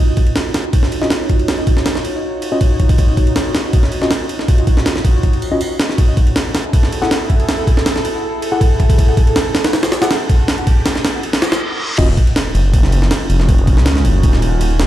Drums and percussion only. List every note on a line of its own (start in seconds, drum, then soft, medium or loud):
0.17 kick medium
0.17 ride medium
0.27 ride soft
0.36 snare loud
0.36 ride medium
0.54 snare loud
0.54 ride medium
0.73 kick loud
0.73 ride medium
0.83 snare soft
0.92 ride medium
1.02 snare soft
1.10 snare loud
1.10 ride medium
1.30 kick medium
1.30 ride medium
1.39 ride soft
1.48 snare loud
1.48 ride medium
1.67 kick medium
1.67 ride medium
1.77 snare medium
1.86 snare loud
1.86 ride medium
1.95 snare medium
2.05 ride medium
2.42 ride medium
2.61 kick loud
2.61 ride medium
2.80 kick medium
2.80 ride medium
2.89 kick loud
2.89 ride medium
2.98 kick loud
2.98 ride medium
3.17 kick medium
3.17 ride medium
3.27 ride soft
3.36 snare loud
3.36 ride medium
3.55 snare loud
3.55 ride medium
3.73 kick loud
3.73 ride medium
3.83 snare soft
3.92 ride medium
4.02 snare medium
4.11 snare loud
4.11 ride medium
4.29 ride medium
4.39 snare soft
4.48 kick loud
4.48 ride medium
4.58 ride soft
4.67 kick medium
4.67 ride medium
4.77 snare medium
4.86 snare loud
4.86 ride medium
4.96 snare medium
5.05 kick loud
5.05 ride medium
5.23 kick medium
5.23 ride medium
5.33 ride soft
5.42 ride medium
5.61 ride medium
5.80 snare loud
5.80 ride medium
5.89 snare soft
5.98 kick loud
5.98 ride medium
6.17 kick medium
6.17 ride medium
6.27 ride soft
6.36 snare loud
6.36 ride medium
6.55 snare loud
6.55 ride medium
6.73 kick loud
6.73 ride medium
6.83 snare soft
6.92 ride medium
7.02 snare medium
7.11 snare loud
7.11 ride medium
7.30 kick medium
7.30 ride medium
7.40 ride soft
7.49 snare loud
7.49 ride medium
7.67 kick medium
7.67 ride medium
7.77 snare medium
7.86 snare loud
7.86 ride medium
7.96 snare medium
8.05 ride medium
8.42 ride medium
8.61 kick loud
8.61 ride medium
8.80 kick medium
8.80 ride medium
8.90 kick loud
8.90 ride medium
8.98 kick loud
8.98 ride medium
9.17 kick loud
9.17 ride medium
9.27 ride soft
9.36 snare loud
9.36 ride medium
9.55 snare loud
9.55 ride medium
9.64 snare loud
9.64 ride medium
9.73 snare loud
9.73 ride medium
9.83 snare loud
9.83 ride medium
9.92 snare loud
9.92 ride medium
10.02 snare loud
10.02 ride medium
10.11 snare loud
10.11 ride medium
10.29 kick loud
10.29 ride medium
10.48 snare loud
10.48 ride medium
10.58 ride soft
10.67 kick loud
10.67 ride medium
10.86 snare loud
10.86 ride medium
10.96 snare medium
11.05 snare loud
11.05 ride medium
11.23 ride medium
11.33 snare loud
11.33 ride medium
11.42 snare loud
11.42 ride medium
11.52 snare loud
11.52 ride medium
11.98 kick loud
11.98 crash medium
11.98 ride medium
12.17 kick loud
12.17 ride medium
12.27 ride soft
12.36 snare loud
12.36 ride medium
12.55 ride medium
12.74 kick loud
12.74 ride medium
12.83 snare soft
12.92 ride medium
13.02 snare medium
13.11 snare loud
13.11 ride medium
13.30 ride medium
13.40 snare soft
13.49 kick loud
13.49 ride medium
13.58 ride soft
13.67 kick loud
13.67 ride medium
13.77 snare medium
13.86 snare loud
13.86 ride medium
13.96 snare medium
14.05 ride medium
14.23 kick loud
14.23 ride medium
14.33 snare soft
14.42 ride medium
14.61 ride medium
14.80 snare loud
14.80 ride medium